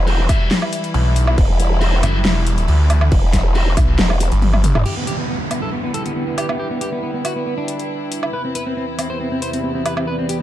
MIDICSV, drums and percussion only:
0, 0, Header, 1, 2, 480
1, 0, Start_track
1, 0, Key_signature, 1, "minor"
1, 0, Tempo, 434783
1, 1521, Time_signature, 4, 2, 24, 8
1, 11506, End_track
2, 0, Start_track
2, 0, Title_t, "Drums"
2, 82, Note_on_c, 9, 49, 49
2, 193, Note_off_c, 9, 49, 0
2, 322, Note_on_c, 9, 36, 103
2, 322, Note_on_c, 9, 42, 82
2, 322, Note_on_c, 9, 77, 57
2, 432, Note_off_c, 9, 36, 0
2, 432, Note_off_c, 9, 42, 0
2, 432, Note_off_c, 9, 77, 0
2, 562, Note_on_c, 9, 38, 120
2, 562, Note_on_c, 9, 49, 65
2, 673, Note_off_c, 9, 38, 0
2, 673, Note_off_c, 9, 49, 0
2, 686, Note_on_c, 9, 77, 66
2, 797, Note_off_c, 9, 77, 0
2, 802, Note_on_c, 9, 42, 80
2, 912, Note_off_c, 9, 42, 0
2, 926, Note_on_c, 9, 42, 35
2, 1037, Note_off_c, 9, 42, 0
2, 1041, Note_on_c, 9, 49, 47
2, 1152, Note_off_c, 9, 49, 0
2, 1281, Note_on_c, 9, 42, 73
2, 1392, Note_off_c, 9, 42, 0
2, 1406, Note_on_c, 9, 77, 82
2, 1517, Note_off_c, 9, 77, 0
2, 1523, Note_on_c, 9, 36, 110
2, 1523, Note_on_c, 9, 49, 69
2, 1633, Note_off_c, 9, 36, 0
2, 1633, Note_off_c, 9, 49, 0
2, 1763, Note_on_c, 9, 42, 79
2, 1873, Note_off_c, 9, 42, 0
2, 2002, Note_on_c, 9, 49, 48
2, 2113, Note_off_c, 9, 49, 0
2, 2242, Note_on_c, 9, 42, 82
2, 2242, Note_on_c, 9, 77, 56
2, 2353, Note_off_c, 9, 42, 0
2, 2353, Note_off_c, 9, 77, 0
2, 2482, Note_on_c, 9, 38, 115
2, 2482, Note_on_c, 9, 49, 67
2, 2593, Note_off_c, 9, 38, 0
2, 2593, Note_off_c, 9, 49, 0
2, 2722, Note_on_c, 9, 42, 80
2, 2832, Note_off_c, 9, 42, 0
2, 2846, Note_on_c, 9, 42, 37
2, 2957, Note_off_c, 9, 42, 0
2, 2961, Note_on_c, 9, 49, 50
2, 3071, Note_off_c, 9, 49, 0
2, 3201, Note_on_c, 9, 42, 80
2, 3201, Note_on_c, 9, 77, 86
2, 3312, Note_off_c, 9, 42, 0
2, 3312, Note_off_c, 9, 77, 0
2, 3325, Note_on_c, 9, 77, 81
2, 3436, Note_off_c, 9, 77, 0
2, 3441, Note_on_c, 9, 49, 71
2, 3442, Note_on_c, 9, 36, 109
2, 3551, Note_off_c, 9, 49, 0
2, 3553, Note_off_c, 9, 36, 0
2, 3681, Note_on_c, 9, 38, 60
2, 3681, Note_on_c, 9, 42, 81
2, 3682, Note_on_c, 9, 36, 60
2, 3792, Note_off_c, 9, 38, 0
2, 3792, Note_off_c, 9, 42, 0
2, 3793, Note_off_c, 9, 36, 0
2, 3922, Note_on_c, 9, 49, 49
2, 4032, Note_off_c, 9, 49, 0
2, 4162, Note_on_c, 9, 36, 104
2, 4162, Note_on_c, 9, 42, 84
2, 4162, Note_on_c, 9, 77, 57
2, 4272, Note_off_c, 9, 36, 0
2, 4272, Note_off_c, 9, 42, 0
2, 4272, Note_off_c, 9, 77, 0
2, 4402, Note_on_c, 9, 38, 118
2, 4402, Note_on_c, 9, 49, 69
2, 4512, Note_off_c, 9, 38, 0
2, 4512, Note_off_c, 9, 49, 0
2, 4527, Note_on_c, 9, 77, 67
2, 4637, Note_off_c, 9, 77, 0
2, 4642, Note_on_c, 9, 42, 81
2, 4752, Note_off_c, 9, 42, 0
2, 4767, Note_on_c, 9, 42, 39
2, 4877, Note_off_c, 9, 42, 0
2, 4882, Note_on_c, 9, 48, 63
2, 4882, Note_on_c, 9, 49, 51
2, 4992, Note_off_c, 9, 48, 0
2, 4992, Note_off_c, 9, 49, 0
2, 5006, Note_on_c, 9, 48, 70
2, 5006, Note_on_c, 9, 77, 69
2, 5116, Note_off_c, 9, 48, 0
2, 5116, Note_off_c, 9, 77, 0
2, 5122, Note_on_c, 9, 42, 84
2, 5122, Note_on_c, 9, 47, 83
2, 5232, Note_off_c, 9, 42, 0
2, 5232, Note_off_c, 9, 47, 0
2, 5246, Note_on_c, 9, 45, 82
2, 5246, Note_on_c, 9, 77, 80
2, 5356, Note_off_c, 9, 45, 0
2, 5356, Note_off_c, 9, 77, 0
2, 5361, Note_on_c, 9, 49, 80
2, 5472, Note_off_c, 9, 49, 0
2, 5601, Note_on_c, 9, 42, 76
2, 5711, Note_off_c, 9, 42, 0
2, 6082, Note_on_c, 9, 42, 77
2, 6082, Note_on_c, 9, 77, 48
2, 6192, Note_off_c, 9, 42, 0
2, 6192, Note_off_c, 9, 77, 0
2, 6561, Note_on_c, 9, 42, 81
2, 6671, Note_off_c, 9, 42, 0
2, 6686, Note_on_c, 9, 42, 36
2, 6797, Note_off_c, 9, 42, 0
2, 7041, Note_on_c, 9, 42, 75
2, 7041, Note_on_c, 9, 77, 72
2, 7152, Note_off_c, 9, 42, 0
2, 7152, Note_off_c, 9, 77, 0
2, 7166, Note_on_c, 9, 77, 73
2, 7276, Note_off_c, 9, 77, 0
2, 7521, Note_on_c, 9, 42, 74
2, 7632, Note_off_c, 9, 42, 0
2, 8001, Note_on_c, 9, 42, 80
2, 8001, Note_on_c, 9, 77, 48
2, 8112, Note_off_c, 9, 42, 0
2, 8112, Note_off_c, 9, 77, 0
2, 8481, Note_on_c, 9, 42, 79
2, 8591, Note_off_c, 9, 42, 0
2, 8605, Note_on_c, 9, 42, 36
2, 8716, Note_off_c, 9, 42, 0
2, 8960, Note_on_c, 9, 42, 74
2, 9071, Note_off_c, 9, 42, 0
2, 9084, Note_on_c, 9, 77, 70
2, 9195, Note_off_c, 9, 77, 0
2, 9441, Note_on_c, 9, 42, 77
2, 9551, Note_off_c, 9, 42, 0
2, 9921, Note_on_c, 9, 42, 80
2, 9921, Note_on_c, 9, 77, 46
2, 10031, Note_off_c, 9, 42, 0
2, 10031, Note_off_c, 9, 77, 0
2, 10401, Note_on_c, 9, 42, 79
2, 10511, Note_off_c, 9, 42, 0
2, 10526, Note_on_c, 9, 42, 36
2, 10636, Note_off_c, 9, 42, 0
2, 10881, Note_on_c, 9, 42, 74
2, 10881, Note_on_c, 9, 77, 71
2, 10991, Note_off_c, 9, 42, 0
2, 10991, Note_off_c, 9, 77, 0
2, 11006, Note_on_c, 9, 77, 71
2, 11116, Note_off_c, 9, 77, 0
2, 11362, Note_on_c, 9, 42, 73
2, 11473, Note_off_c, 9, 42, 0
2, 11506, End_track
0, 0, End_of_file